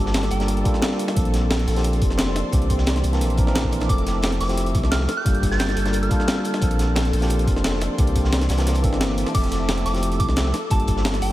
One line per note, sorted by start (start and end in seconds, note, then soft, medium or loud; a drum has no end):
0.00 0.30 G1 loud
0.00 0.37 G3 medium
0.00 0.38 A#3 medium
0.00 0.38 D4 medium
0.00 0.38 F4 medium
0.00 0.39 G4 medium
0.00 2.49 A4 medium
0.06 snare medium
0.14 snare loud
0.14 closed hi-hat medium
0.22 snare soft
0.22 closed hi-hat soft
0.31 0.64 G1 loud
0.31 0.65 G5 medium
0.31 closed hi-hat medium
0.39 0.46 G3 medium
0.39 0.46 A#3 medium
0.39 0.46 D4 medium
0.39 0.47 F4 medium
0.39 0.47 A#4 medium
0.39 snare medium
0.39 closed hi-hat soft
0.48 closed hi-hat loud
0.48 closed hi-hat medium
0.57 closed hi-hat soft
0.64 1.14 G3 loud
0.64 1.14 A#3 medium
0.64 1.14 D4 medium
0.64 1.15 F4 medium
0.64 1.15 A4 loud
0.64 kick loud
0.64 closed hi-hat medium
0.74 snare soft
0.82 snare loud
0.82 closed hi-hat loud
0.82 closed hi-hat medium
0.91 snare soft
0.99 closed hi-hat medium
1.08 snare medium
1.08 closed hi-hat soft
1.15 1.66 A#1 loud
1.15 1.74 F3 medium
1.15 1.74 A#3 medium
1.15 1.74 C4 medium
1.15 1.75 D4 medium
1.15 1.75 A4 medium
1.15 2.51 D5 medium
1.15 2.51 C6 medium
1.15 kick loud
1.15 closed hi-hat medium
1.25 closed hi-hat soft
1.34 snare soft
1.34 closed hi-hat medium
1.50 snare loud
1.50 closed hi-hat medium
1.59 snare soft
1.59 closed hi-hat soft
1.67 2.03 A#1 loud
1.67 snare soft
1.67 closed hi-hat medium
1.67 open hi-hat medium
1.75 2.50 F3 medium
1.75 2.51 A#3 medium
1.75 2.51 C4 medium
1.75 2.51 D4 medium
1.75 2.52 G4 loud
1.75 snare medium
1.75 closed hi-hat soft
1.84 closed hi-hat medium
1.93 closed hi-hat soft
2.02 2.43 F1 medium
2.02 kick loud
2.02 closed hi-hat medium
2.10 snare soft
2.18 snare loud
2.18 closed hi-hat medium
2.27 snare soft
2.36 snare soft
2.36 closed hi-hat medium
2.51 3.03 C2 loud
2.51 3.10 E3 medium
2.51 3.10 A#3 medium
2.51 3.11 C4 medium
2.51 3.11 D4 medium
2.51 3.11 G4 medium
2.51 3.88 A#4 medium
2.51 3.88 E5 medium
2.51 3.88 A5 medium
2.51 3.88 D6 medium
2.51 kick loud
2.51 closed hi-hat medium
2.62 closed hi-hat soft
2.70 kick medium
2.70 closed hi-hat medium
2.78 snare soft
2.87 snare loud
2.87 closed hi-hat medium
2.96 snare soft
2.96 closed hi-hat soft
3.04 3.22 C2 medium
3.04 closed hi-hat medium
3.12 3.19 E3 medium
3.12 3.19 A#3 medium
3.12 3.19 C4 medium
3.12 3.19 D4 medium
3.12 3.19 A#4 medium
3.12 snare medium
3.12 closed hi-hat soft
3.21 3.88 A#1 medium
3.21 closed hi-hat medium
3.30 closed hi-hat soft
3.37 3.44 E3 medium
3.37 3.45 A#3 medium
3.37 3.45 C4 medium
3.37 3.45 D4 medium
3.37 3.45 A#4 medium
3.37 kick loud
3.37 closed hi-hat medium
3.45 3.87 E3 medium
3.45 3.87 A#3 medium
3.45 3.87 C4 medium
3.45 3.88 D4 medium
3.45 3.88 A#4 medium
3.45 snare soft
3.55 snare loud
3.55 closed hi-hat medium
3.64 kick medium
3.64 snare soft
3.72 closed hi-hat medium
3.80 snare soft
3.80 closed hi-hat soft
3.88 4.39 F1 loud
3.88 4.46 F3 medium
3.88 4.47 A3 medium
3.88 4.47 C4 medium
3.88 4.47 E4 medium
3.88 6.59 A4 medium
3.88 4.48 A4 medium
3.88 4.10 D6 medium
3.88 kick loud
3.88 closed hi-hat medium
3.98 closed hi-hat soft
4.06 snare soft
4.06 closed hi-hat medium
4.22 snare loud
4.22 closed hi-hat medium
4.31 snare soft
4.31 closed hi-hat soft
4.40 4.76 F1 loud
4.40 4.66 D6 medium
4.40 snare soft
4.40 closed hi-hat medium
4.40 open hi-hat medium
4.48 5.07 F3 medium
4.48 5.07 A3 medium
4.48 5.08 C4 medium
4.48 5.08 E4 medium
4.48 5.08 G4 loud
4.48 snare medium
4.48 closed hi-hat soft
4.57 closed hi-hat medium
4.66 closed hi-hat soft
4.75 5.07 C2 medium
4.75 kick loud
4.75 closed hi-hat medium
4.84 snare soft
4.91 5.12 F6 medium
4.91 snare loud
4.91 closed hi-hat medium
5.01 snare soft
5.09 snare soft
5.09 closed hi-hat medium
5.17 5.38 G6 loud
5.25 5.76 G1 loud
5.25 5.83 G3 medium
5.25 5.83 A#3 medium
5.25 5.84 D4 medium
5.25 5.84 F4 medium
5.25 5.84 G4 medium
5.25 kick loud
5.25 closed hi-hat medium
5.35 closed hi-hat soft
5.43 kick medium
5.43 closed hi-hat medium
5.51 5.58 A6 medium
5.51 snare medium
5.59 5.80 G6 medium
5.59 snare loud
5.59 closed hi-hat medium
5.68 snare medium
5.68 snare soft
5.68 closed hi-hat soft
5.77 6.10 G1 loud
5.77 closed hi-hat medium
5.85 5.92 G3 medium
5.85 5.92 A#3 medium
5.85 5.92 D4 medium
5.85 5.92 F4 medium
5.85 5.92 A#4 medium
5.85 snare medium
5.85 closed hi-hat soft
5.93 closed hi-hat medium
6.03 6.50 F6 medium
6.03 closed hi-hat soft
6.10 6.59 G3 loud
6.10 6.60 A#3 medium
6.10 6.60 D4 medium
6.10 6.60 F4 medium
6.10 6.61 A4 loud
6.10 kick loud
6.10 closed hi-hat medium
6.20 snare soft
6.28 snare loud
6.28 closed hi-hat medium
6.36 snare soft
6.45 closed hi-hat medium
6.54 snare soft
6.54 closed hi-hat soft
6.61 7.12 A#1 loud
6.61 7.19 F3 medium
6.61 7.19 A#3 medium
6.61 7.20 C4 medium
6.61 7.20 D4 medium
6.61 7.97 A4 medium
6.61 7.20 A4 medium
6.61 7.97 D5 medium
6.61 7.97 C6 medium
6.61 kick loud
6.61 closed hi-hat medium
6.71 closed hi-hat soft
6.79 snare soft
6.79 closed hi-hat medium
6.96 snare loud
6.96 closed hi-hat medium
7.05 snare soft
7.05 closed hi-hat soft
7.13 7.49 A#1 loud
7.13 closed hi-hat medium
7.13 open hi-hat medium
7.20 7.96 F3 medium
7.20 7.96 A#3 medium
7.20 7.96 C4 medium
7.20 7.97 D4 medium
7.20 7.97 G4 loud
7.20 snare medium
7.20 closed hi-hat soft
7.30 closed hi-hat medium
7.39 closed hi-hat soft
7.47 7.89 F1 medium
7.47 kick loud
7.47 closed hi-hat medium
7.56 snare soft
7.64 snare loud
7.64 closed hi-hat loud
7.64 closed hi-hat medium
7.74 snare soft
7.81 snare soft
7.81 closed hi-hat medium
7.97 8.48 C2 loud
7.97 8.55 E3 medium
7.97 8.56 A#3 medium
7.97 9.33 A#3 medium
7.97 8.56 C4 medium
7.97 8.56 D4 medium
7.97 8.57 G4 medium
7.97 9.34 E5 medium
7.97 9.33 A5 medium
7.97 9.34 D6 medium
7.97 kick loud
7.97 closed hi-hat medium
7.97 closed hi-hat loud
8.07 closed hi-hat soft
8.16 kick medium
8.16 closed hi-hat medium
8.25 snare medium
8.32 snare loud
8.32 closed hi-hat medium
8.32 closed hi-hat loud
8.41 snare medium
8.41 snare soft
8.41 closed hi-hat soft
8.49 8.85 C2 loud
8.49 snare loud
8.49 closed hi-hat medium
8.58 8.64 E3 medium
8.58 8.64 A#3 medium
8.58 8.65 C4 medium
8.58 8.65 D4 medium
8.58 8.65 A#4 medium
8.58 snare loud
8.58 closed hi-hat medium
8.58 closed hi-hat soft
8.67 snare loud
8.67 closed hi-hat medium
8.67 closed hi-hat loud
8.75 closed hi-hat medium
8.75 closed hi-hat soft
8.82 9.25 G1 medium
8.82 9.32 E3 loud
8.82 9.32 A#3 medium
8.82 9.33 C4 medium
8.82 9.33 D4 medium
8.82 9.33 A4 loud
8.82 kick loud
8.82 closed hi-hat medium
8.93 snare soft
9.01 snare loud
9.01 closed hi-hat medium
9.01 closed hi-hat loud
9.09 snare soft
9.18 closed hi-hat medium
9.27 snare soft
9.27 closed hi-hat soft
9.33 9.85 F1 loud
9.33 9.92 F3 medium
9.33 9.92 A3 medium
9.33 9.92 C4 medium
9.33 9.93 E4 medium
9.33 11.32 A4 medium
9.33 9.93 A4 medium
9.33 9.55 D6 medium
9.33 kick loud
9.33 closed hi-hat medium
9.33 closed hi-hat loud
9.33 crash medium
9.44 closed hi-hat soft
9.52 snare soft
9.52 closed hi-hat medium
9.69 snare loud
9.69 closed hi-hat medium
9.78 snare soft
9.78 closed hi-hat soft
9.86 10.21 F1 loud
9.86 10.12 D6 medium
9.86 snare soft
9.86 closed hi-hat medium
9.86 open hi-hat medium
9.93 10.52 F3 medium
9.93 10.53 A3 medium
9.93 10.53 C4 medium
9.93 10.53 E4 medium
9.93 10.54 G4 medium
9.93 snare medium
9.93 closed hi-hat soft
10.03 closed hi-hat loud
10.12 closed hi-hat soft
10.20 10.53 C2 medium
10.20 10.40 D6 medium
10.20 kick loud
10.20 closed hi-hat medium
10.29 snare soft
10.36 snare loud
10.36 closed hi-hat medium
10.46 snare soft
10.54 snare medium
10.54 closed hi-hat medium
10.70 11.21 G1 loud
10.70 11.28 G3 medium
10.70 11.28 A#3 medium
10.70 11.29 D4 medium
10.70 11.29 F4 medium
10.70 11.29 G4 medium
10.70 10.92 A5 medium
10.70 kick loud
10.70 closed hi-hat medium
10.70 closed hi-hat loud
10.80 closed hi-hat soft
10.88 kick medium
10.88 closed hi-hat medium
10.97 snare soft
11.05 snare loud
11.05 closed hi-hat medium
11.13 snare medium
11.13 snare soft
11.13 closed hi-hat soft
11.22 11.32 G1 loud
11.22 11.32 G5 medium
11.22 closed hi-hat medium
11.22 open hi-hat medium